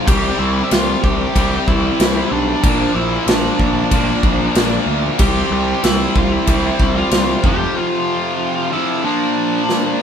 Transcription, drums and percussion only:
0.08 kick, crash
0.71 snare, crash
1.04 kick
1.36 kick, crash
1.68 kick
2.00 snare, crash
2.64 kick, crash
3.28 snare, crash
3.59 kick
3.91 kick, crash
4.23 kick
4.55 snare, crash
5.19 kick, crash
5.84 snare, crash
6.16 kick
6.47 kick, crash
6.80 kick
7.11 snare, crash
7.44 kick
9.69 snare

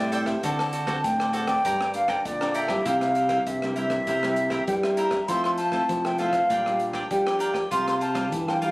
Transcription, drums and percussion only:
0.12 closed hi-hat
0.26 kick, cross-stick
0.43 kick, closed hi-hat
0.59 cross-stick
0.73 closed hi-hat
0.87 kick, cross-stick
1.04 kick, closed hi-hat
1.20 cross-stick
1.33 closed hi-hat
1.48 kick, cross-stick, closed hi-hat
1.65 kick, closed hi-hat
1.81 cross-stick
1.94 closed hi-hat
2.08 kick, cross-stick
2.25 kick, closed hi-hat
2.41 cross-stick
2.54 closed hi-hat
2.68 kick, cross-stick
2.86 kick, closed hi-hat
3.01 cross-stick, closed hi-hat
3.15 closed hi-hat
3.29 kick, cross-stick, closed hi-hat
3.47 kick, closed hi-hat
3.62 cross-stick
3.76 closed hi-hat
3.90 kick, cross-stick, closed hi-hat
4.07 kick, closed hi-hat
4.23 cross-stick
4.36 closed hi-hat
4.50 kick, cross-stick
4.67 kick, closed hi-hat
4.83 cross-stick
4.97 closed hi-hat
5.11 kick, cross-stick
5.28 kick, closed hi-hat
5.44 cross-stick
5.58 closed hi-hat
5.72 kick, cross-stick
5.89 kick, closed hi-hat
6.05 cross-stick
6.18 closed hi-hat
6.33 kick, cross-stick, closed hi-hat
6.50 kick, closed hi-hat
6.66 cross-stick
6.79 closed hi-hat
6.93 kick, cross-stick
7.11 kick, closed hi-hat
7.27 cross-stick
7.40 closed hi-hat
7.54 kick, cross-stick
7.71 kick, closed hi-hat
7.88 cross-stick, closed hi-hat
8.01 closed hi-hat
8.15 kick, cross-stick, closed hi-hat
8.32 kick, closed hi-hat
8.48 cross-stick
8.62 closed hi-hat

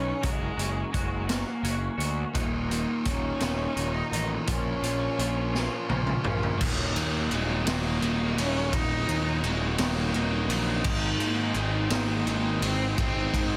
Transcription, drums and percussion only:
0.23 kick, closed hi-hat
0.59 closed hi-hat
0.94 kick, closed hi-hat
1.29 snare, closed hi-hat
1.64 closed hi-hat
2.00 closed hi-hat
2.35 kick, closed hi-hat
2.71 closed hi-hat
3.05 kick, closed hi-hat
3.40 snare, closed hi-hat
3.77 closed hi-hat
4.13 closed hi-hat
4.47 kick, closed hi-hat
4.83 closed hi-hat
5.19 closed hi-hat
5.55 snare
5.90 high tom
6.07 mid tom
6.24 mid tom
6.43 floor tom
6.61 kick, crash
6.96 ride
7.31 ride
7.67 snare, ride
8.02 ride
8.38 ride
8.73 kick, ride
9.09 ride
9.44 ride
9.78 snare, ride
10.14 ride
10.50 ride
10.84 kick, crash
11.20 ride
11.54 ride
11.90 snare, ride
12.27 ride
12.62 ride
12.98 kick, ride
13.34 kick, ride

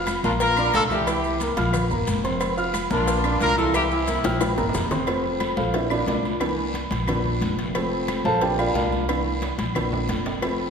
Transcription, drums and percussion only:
0.07 cowbell, high conga, low agogo, short guiro, claves, maracas
0.24 high conga, short guiro, maracas
0.40 cowbell, high conga, low agogo, long guiro, maracas
0.57 high conga, low agogo, claves, maracas
0.74 cowbell, high conga, low timbale, short guiro, maracas
0.90 high conga, low agogo, short guiro, maracas
1.07 cowbell, high conga, low agogo, long guiro, claves, maracas
1.24 high conga, maracas
1.40 cowbell, high conga, low agogo, short guiro, maracas
1.57 cowbell, high conga, low agogo, short guiro, maracas
1.73 cowbell, high conga, low conga, low agogo, long guiro, claves, maracas
1.91 high conga, low conga, maracas
2.07 cowbell, high conga, low agogo, short guiro, maracas
2.24 cowbell, high conga, short guiro, maracas
2.41 cowbell, high conga, low agogo, long guiro, claves, maracas
2.57 high conga, maracas
2.74 cowbell, high conga, low agogo, short guiro, claves, maracas
2.91 high conga, short guiro, maracas
3.08 cowbell, high conga, low agogo, long guiro, maracas
3.24 high conga, low agogo, claves, maracas
3.40 cowbell, high conga, low timbale, short guiro, maracas
3.57 low agogo, short guiro, maracas
3.74 cowbell, high conga, low agogo, long guiro, claves, maracas
3.91 high conga, maracas
4.07 cowbell, high conga, low agogo, short guiro, maracas
4.24 cowbell, high bongo, high conga, low agogo, short guiro, maracas
4.41 cowbell, high bongo, high conga, low agogo, long guiro, claves, maracas
4.58 low bongo, high timbale, maracas
4.69 low timbale
4.74 cowbell, low bongo, low conga, low agogo, short guiro, maracas
4.80 low timbale
4.91 cowbell, low bongo, low conga, low timbale, short guiro, maracas
5.07 cowbell, high conga, low agogo, long guiro, claves
5.24 high conga
5.40 cowbell, high conga, low agogo, short guiro, claves
5.57 high conga, short guiro
5.73 cowbell, high conga, low agogo, long guiro
5.90 high conga, low agogo, claves
6.07 cowbell, high conga, low timbale, short guiro
6.23 high conga, low agogo, short guiro
6.40 cowbell, high conga, low agogo, long guiro, claves
6.57 high conga
6.74 cowbell, high conga, low agogo, short guiro
6.91 cowbell, high conga, low agogo, short guiro
7.07 cowbell, high conga, low conga, low agogo, long guiro, claves
7.24 high conga, low conga
7.41 cowbell, high conga, low agogo, short guiro
7.58 cowbell, high conga, short guiro
7.75 cowbell, high conga, low agogo, long guiro, claves
7.92 high conga
8.08 cowbell, high conga, low agogo, short guiro, claves
8.25 high conga, short guiro
8.41 cowbell, high conga, low agogo, long guiro
8.59 high conga, low agogo, claves
8.75 cowbell, high conga, short guiro
8.92 high conga, low agogo, short guiro
9.09 cowbell, high conga, low agogo, long guiro, claves
9.26 high conga
9.42 cowbell, high conga, high timbale, low agogo, short guiro
9.59 cowbell, high conga, low agogo, short guiro
9.75 cowbell, high conga, low conga, high timbale, low agogo, long guiro, claves
9.92 high conga, low conga, low timbale
10.08 cowbell, high conga, low timbale, low agogo, short guiro
10.25 cowbell, high conga, low timbale, short guiro
10.42 cowbell, high conga, low agogo, long guiro, claves
10.59 high conga

